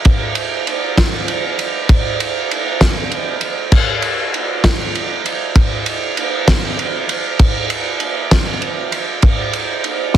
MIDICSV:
0, 0, Header, 1, 2, 480
1, 0, Start_track
1, 0, Tempo, 611621
1, 44, Time_signature, 6, 3, 24, 8
1, 7986, End_track
2, 0, Start_track
2, 0, Title_t, "Drums"
2, 38, Note_on_c, 9, 51, 102
2, 43, Note_on_c, 9, 36, 111
2, 117, Note_off_c, 9, 51, 0
2, 122, Note_off_c, 9, 36, 0
2, 276, Note_on_c, 9, 51, 83
2, 355, Note_off_c, 9, 51, 0
2, 526, Note_on_c, 9, 51, 86
2, 605, Note_off_c, 9, 51, 0
2, 765, Note_on_c, 9, 36, 85
2, 769, Note_on_c, 9, 38, 117
2, 769, Note_on_c, 9, 51, 106
2, 844, Note_off_c, 9, 36, 0
2, 848, Note_off_c, 9, 38, 0
2, 848, Note_off_c, 9, 51, 0
2, 1004, Note_on_c, 9, 51, 74
2, 1083, Note_off_c, 9, 51, 0
2, 1246, Note_on_c, 9, 51, 79
2, 1325, Note_off_c, 9, 51, 0
2, 1485, Note_on_c, 9, 36, 112
2, 1486, Note_on_c, 9, 51, 111
2, 1564, Note_off_c, 9, 36, 0
2, 1565, Note_off_c, 9, 51, 0
2, 1729, Note_on_c, 9, 51, 80
2, 1807, Note_off_c, 9, 51, 0
2, 1972, Note_on_c, 9, 51, 86
2, 2051, Note_off_c, 9, 51, 0
2, 2204, Note_on_c, 9, 36, 78
2, 2205, Note_on_c, 9, 38, 116
2, 2205, Note_on_c, 9, 51, 101
2, 2282, Note_off_c, 9, 36, 0
2, 2283, Note_off_c, 9, 38, 0
2, 2283, Note_off_c, 9, 51, 0
2, 2445, Note_on_c, 9, 51, 74
2, 2523, Note_off_c, 9, 51, 0
2, 2675, Note_on_c, 9, 51, 77
2, 2754, Note_off_c, 9, 51, 0
2, 2917, Note_on_c, 9, 49, 98
2, 2920, Note_on_c, 9, 36, 112
2, 2995, Note_off_c, 9, 49, 0
2, 2998, Note_off_c, 9, 36, 0
2, 3157, Note_on_c, 9, 51, 75
2, 3236, Note_off_c, 9, 51, 0
2, 3406, Note_on_c, 9, 51, 71
2, 3485, Note_off_c, 9, 51, 0
2, 3640, Note_on_c, 9, 36, 73
2, 3643, Note_on_c, 9, 38, 113
2, 3643, Note_on_c, 9, 51, 108
2, 3719, Note_off_c, 9, 36, 0
2, 3722, Note_off_c, 9, 38, 0
2, 3722, Note_off_c, 9, 51, 0
2, 3887, Note_on_c, 9, 51, 76
2, 3966, Note_off_c, 9, 51, 0
2, 4125, Note_on_c, 9, 51, 77
2, 4204, Note_off_c, 9, 51, 0
2, 4361, Note_on_c, 9, 36, 112
2, 4362, Note_on_c, 9, 51, 97
2, 4439, Note_off_c, 9, 36, 0
2, 4440, Note_off_c, 9, 51, 0
2, 4600, Note_on_c, 9, 51, 81
2, 4678, Note_off_c, 9, 51, 0
2, 4843, Note_on_c, 9, 51, 90
2, 4922, Note_off_c, 9, 51, 0
2, 5083, Note_on_c, 9, 36, 83
2, 5083, Note_on_c, 9, 38, 116
2, 5083, Note_on_c, 9, 51, 110
2, 5161, Note_off_c, 9, 36, 0
2, 5162, Note_off_c, 9, 38, 0
2, 5162, Note_off_c, 9, 51, 0
2, 5328, Note_on_c, 9, 51, 79
2, 5407, Note_off_c, 9, 51, 0
2, 5565, Note_on_c, 9, 51, 85
2, 5643, Note_off_c, 9, 51, 0
2, 5802, Note_on_c, 9, 51, 112
2, 5804, Note_on_c, 9, 36, 113
2, 5881, Note_off_c, 9, 51, 0
2, 5883, Note_off_c, 9, 36, 0
2, 6043, Note_on_c, 9, 51, 78
2, 6121, Note_off_c, 9, 51, 0
2, 6278, Note_on_c, 9, 51, 86
2, 6357, Note_off_c, 9, 51, 0
2, 6524, Note_on_c, 9, 36, 80
2, 6525, Note_on_c, 9, 38, 114
2, 6525, Note_on_c, 9, 51, 108
2, 6603, Note_off_c, 9, 36, 0
2, 6603, Note_off_c, 9, 38, 0
2, 6603, Note_off_c, 9, 51, 0
2, 6763, Note_on_c, 9, 51, 72
2, 6842, Note_off_c, 9, 51, 0
2, 7002, Note_on_c, 9, 51, 79
2, 7081, Note_off_c, 9, 51, 0
2, 7238, Note_on_c, 9, 51, 97
2, 7244, Note_on_c, 9, 36, 118
2, 7317, Note_off_c, 9, 51, 0
2, 7322, Note_off_c, 9, 36, 0
2, 7481, Note_on_c, 9, 51, 68
2, 7560, Note_off_c, 9, 51, 0
2, 7722, Note_on_c, 9, 51, 80
2, 7801, Note_off_c, 9, 51, 0
2, 7960, Note_on_c, 9, 38, 64
2, 7986, Note_off_c, 9, 38, 0
2, 7986, End_track
0, 0, End_of_file